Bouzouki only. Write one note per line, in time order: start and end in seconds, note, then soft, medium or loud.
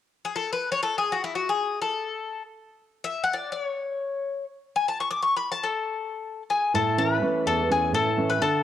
0.25 0.36 G#4 medium
0.35 0.52 A4 medium
0.53 0.71 B4 medium
0.72 0.82 C#5 medium
0.83 0.98 A4 medium
0.98 1.13 G#4 medium
1.12 1.24 F#4 medium
1.24 1.35 E4 medium
1.35 1.50 F#4 medium
1.49 1.81 G#4 medium
1.82 2.42 A4 medium
3.04 3.23 E5 medium
3.24 3.34 F#5 medium
3.33 3.52 D5 medium
3.52 4.43 C#5 medium
4.76 4.88 G#5 medium
4.88 5.00 A5 medium
5.00 5.10 C#6 medium
5.11 5.22 D6 medium
5.23 5.36 C#6 medium
5.37 5.51 B5 medium
5.52 5.65 A5 medium
5.63 6.42 A4 medium
6.50 6.72 G#4 medium
6.75 6.97 A4 medium
6.98 7.15 A#4 medium
7.15 7.48 B4 medium
7.47 7.69 A4 medium
7.72 7.93 G#4 medium
7.94 8.31 A4 medium
8.30 8.42 B4 medium
8.42 8.63 A4 medium